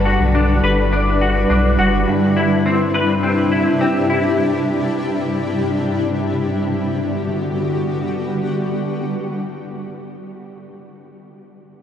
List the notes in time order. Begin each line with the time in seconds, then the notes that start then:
Already playing: G1 G2 D3 G3 D4 E4 B4
0.05 F#4
0.20 B1
0.35 D4
0.63 G1 B4
0.93 D4
1.21 F#4
1.50 B1 D4
1.79 F#1 F#4
2.08 G2 C3 G4
2.37 E4
2.66 C4
2.94 B4
3.23 C4
3.52 E4
3.81 C4
4.10 E4
6.69 D3 G3 B3 F#4 G4